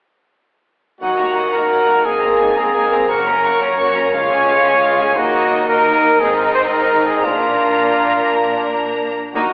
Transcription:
1.01 1.33 D#2 soft
1.01 2.02 D#2 soft
1.01 1.17 F#3 soft
1.01 4.11 A#3 soft
1.01 1.18 D#4 soft
1.01 2.02 D#4 soft
1.01 1.49 F#4 soft
1.01 1.17 F#5 soft
1.18 1.36 A#3 soft
1.18 1.35 F#4 soft
1.18 1.36 A#5 soft
1.35 1.53 F#3 soft
1.35 1.53 D#4 soft
1.35 1.53 F#5 soft
1.53 1.71 A#3 soft
1.53 1.71 F#4 soft
1.53 2.07 A#4 soft
1.53 1.71 A#5 soft
1.70 1.87 F#3 soft
1.70 1.86 D#4 soft
1.70 1.87 F#5 soft
1.87 2.03 A#3 soft
1.87 2.05 F#4 soft
1.87 2.05 A#5 soft
2.04 2.38 G#1 soft
2.04 3.10 G#2 soft
2.04 2.21 A#3 soft
2.04 3.10 C4 soft
2.04 2.21 D#4 soft
2.04 2.56 G#4 soft
2.04 2.21 G#5 soft
2.21 2.40 A#3 soft
2.21 2.40 C4 soft
2.21 2.39 A#5 soft
2.39 2.58 A#3 soft
2.39 2.58 D#4 soft
2.39 2.57 G#5 soft
2.57 2.74 A#3 soft
2.57 2.75 C4 soft
2.57 3.08 G#4 soft
2.57 2.75 A#5 soft
2.75 2.92 A#3 soft
2.75 2.91 D#4 soft
2.75 2.91 G#5 soft
2.92 3.09 A#3 soft
2.92 3.10 C4 soft
2.92 3.10 A#5 soft
3.09 3.42 F#1 soft
3.09 4.12 F#2 soft
3.09 3.26 A#3 soft
3.09 4.12 C#4 soft
3.09 3.26 F#4 soft
3.09 3.61 A#4 medium
3.09 3.26 C#6 soft
3.27 3.44 C#4 soft
3.27 3.45 A#4 soft
3.27 3.45 A#5 soft
3.44 3.62 A#3 soft
3.44 3.62 F#4 soft
3.44 3.62 C#6 soft
3.62 3.80 C#4 soft
3.62 3.80 A#4 soft
3.62 5.19 C#5 medium
3.62 3.79 A#5 soft
3.79 3.95 A#3 soft
3.79 3.96 F#4 soft
3.79 3.95 C#6 soft
3.95 4.13 C#4 soft
3.95 4.15 A#4 soft
3.95 4.14 A#5 soft
4.14 5.17 C#2 soft
4.14 4.46 C#2 soft
4.14 4.30 G#3 soft
4.14 5.17 G#3 soft
4.14 5.17 F4 soft
4.14 4.31 F4 soft
4.14 4.30 F5 soft
4.30 4.48 C#4 soft
4.30 4.49 G#4 soft
4.30 4.49 G#5 soft
4.49 4.66 G#3 soft
4.49 4.66 F4 soft
4.49 4.66 F5 soft
4.65 4.83 C#4 soft
4.65 4.83 G#4 soft
4.65 4.83 G#5 soft
4.82 4.98 G#3 soft
4.82 4.99 F4 soft
4.82 4.98 F5 soft
5.00 5.17 C#4 soft
5.00 5.17 G#4 soft
5.00 5.17 G#5 soft
5.17 6.17 D#2 soft
5.17 5.50 D#2 soft
5.17 5.65 A#3 soft
5.17 5.66 A#3 soft
5.17 5.65 D#4 soft
5.17 5.67 D#4 soft
5.17 5.68 F#4 medium
5.17 5.66 D#5 soft
5.68 6.20 A#3 soft
5.68 6.20 D#4 soft
5.68 6.22 A#4 medium
5.68 6.19 D#5 soft
6.20 6.52 G#1 soft
6.20 7.25 G#2 soft
6.20 7.25 C4 soft
6.20 7.23 D#4 soft
6.20 6.36 G#4 medium
6.20 7.23 D#5 soft
6.37 6.53 A#4 medium
6.54 6.62 C5 medium
6.72 7.08 A#4 medium
7.06 7.26 G#4 medium
7.24 7.57 A#1 soft
7.24 9.17 A#2 soft
7.24 9.13 A#3 soft
7.24 9.17 A#3 soft
7.24 9.13 D4 soft
7.24 9.17 D4 soft
7.24 8.82 F4 medium
7.24 9.13 A#5 soft
9.34 9.50 D#2 soft
9.34 9.42 D#2 soft
9.34 9.51 A#3 soft
9.34 9.53 A#3 soft
9.34 9.53 D#4 soft
9.34 9.52 D#4 soft
9.34 9.53 F#4 soft
9.34 9.53 A#5 soft

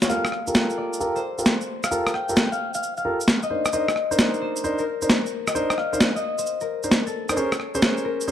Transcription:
0.02 0.08 F4 medium
0.02 0.08 F#4 medium
0.02 0.08 C#5 medium
0.02 snare medium
0.02 closed hi-hat medium
0.02 cabasa medium
0.09 0.22 F4 medium
0.09 0.22 G4 medium
0.09 0.22 A4 medium
0.09 0.22 A#4 medium
0.09 1.76 F5 medium
0.09 cabasa medium
0.25 cross-stick medium
0.25 cabasa soft
0.32 cross-stick soft
0.47 0.99 F4 medium
0.47 0.99 G4 medium
0.47 0.99 A4 medium
0.47 0.99 A#4 medium
0.47 cabasa medium
0.54 snare loud
0.54 cabasa medium
0.70 cabasa soft
0.78 2.62 D5 medium
0.93 cabasa medium
1.00 1.18 F4 medium
1.00 1.18 G4 medium
1.00 1.18 A4 medium
1.00 1.18 A#4 loud
1.00 cabasa medium
1.16 1.45 C5 medium
1.16 cabasa soft
1.38 1.50 F4 medium
1.38 1.50 G4 medium
1.38 1.50 A4 medium
1.38 1.50 A#4 medium
1.38 cabasa medium
1.46 3.44 C5 medium
1.46 snare loud
1.46 cabasa medium
1.61 cabasa soft
1.83 2.51 F5 medium
1.83 cross-stick medium
1.83 cabasa medium
1.91 2.09 F4 medium
1.91 2.09 G4 medium
1.91 2.09 A4 medium
1.91 2.09 A#4 loud
1.91 cabasa medium
2.07 cross-stick medium
2.07 cabasa soft
2.14 3.69 G5 medium
2.14 cross-stick soft
2.29 2.41 F4 medium
2.29 2.41 G4 medium
2.29 2.41 A4 medium
2.29 2.41 A#4 medium
2.29 cabasa medium
2.36 snare loud
2.36 cabasa medium
2.52 2.74 F5 medium
2.52 cabasa soft
2.74 2.97 F5 medium
2.74 cabasa medium
2.83 cabasa medium
2.97 4.64 F5 medium
2.97 cabasa soft
3.05 3.17 F4 medium
3.05 3.17 G4 medium
3.05 3.17 A4 medium
3.05 3.17 A#4 medium
3.21 cabasa medium
3.28 snare loud
3.28 cabasa medium
3.43 3.73 D#5 medium
3.43 cabasa soft
3.50 3.63 D4 medium
3.50 3.63 D#4 medium
3.50 3.63 A#4 medium
3.50 3.63 C5 medium
3.65 cross-stick medium
3.65 cabasa medium
3.73 3.85 D4 medium
3.73 3.85 D#4 medium
3.73 3.85 A#4 medium
3.73 3.85 C5 medium
3.73 5.47 D#5 medium
3.73 cabasa medium
3.88 cross-stick medium
3.88 cabasa soft
3.96 cross-stick soft
4.11 4.62 D4 medium
4.11 4.62 D#4 medium
4.11 4.62 A#4 medium
4.11 4.62 C5 medium
4.11 cabasa medium
4.19 snare loud
4.19 cabasa medium
4.34 cabasa soft
4.41 6.38 C5 medium
4.56 cabasa medium
4.64 4.81 D4 medium
4.64 4.81 D#4 medium
4.64 4.81 A#4 medium
4.64 4.81 C5 loud
4.64 cabasa medium
4.78 5.09 A#4 medium
4.78 cabasa soft
5.02 5.14 D4 medium
5.02 5.14 D#4 medium
5.02 5.14 A#4 medium
5.02 5.14 C5 medium
5.02 cabasa medium
5.09 6.61 A#4 medium
5.09 snare loud
5.09 cabasa medium
5.26 cabasa soft
5.47 6.15 D#5 medium
5.47 cross-stick medium
5.47 cabasa medium
5.55 5.72 D4 medium
5.55 5.72 D#4 medium
5.55 5.72 A#4 medium
5.55 5.72 C5 loud
5.55 cabasa medium
5.70 cross-stick medium
5.70 cabasa soft
5.78 7.44 F5 medium
5.78 cross-stick soft
5.93 6.05 D4 medium
5.93 6.05 D#4 medium
5.93 6.05 A#4 medium
5.93 6.05 C5 medium
5.93 cabasa medium
6.01 snare loud
6.01 cabasa medium
6.16 7.94 D#5 medium
6.16 cabasa soft
6.38 7.43 C5 medium
6.38 cabasa medium
6.46 cabasa medium
6.61 7.12 A#4 medium
6.61 cabasa soft
6.83 6.96 D4 medium
6.83 6.96 D#4 medium
6.83 6.96 A#4 medium
6.83 6.96 C5 medium
6.83 cabasa medium
6.91 snare loud
6.91 cabasa medium
7.06 8.11 A4 medium
7.06 cabasa soft
7.29 7.35 D4 medium
7.29 7.35 D#4 medium
7.29 7.35 A#4 medium
7.29 7.35 C5 medium
7.29 cross-stick medium
7.29 cabasa medium
7.37 7.49 C#4 medium
7.37 7.49 G#4 medium
7.37 7.49 A#4 medium
7.37 7.49 C5 medium
7.37 8.31 C#5 medium
7.37 cabasa medium
7.52 cross-stick medium
7.52 cabasa soft
7.60 cross-stick soft
7.75 8.26 C#4 medium
7.75 8.26 G#4 medium
7.75 8.26 A#4 medium
7.75 8.26 C5 loud
7.75 cabasa medium
7.82 snare loud
7.82 cabasa medium
7.97 cabasa soft
8.05 8.31 A#4 medium
8.21 cabasa medium
8.28 8.31 C#4 medium
8.28 8.31 G#4 medium
8.28 8.31 A#4 medium
8.28 8.31 C5 loud
8.28 cabasa medium

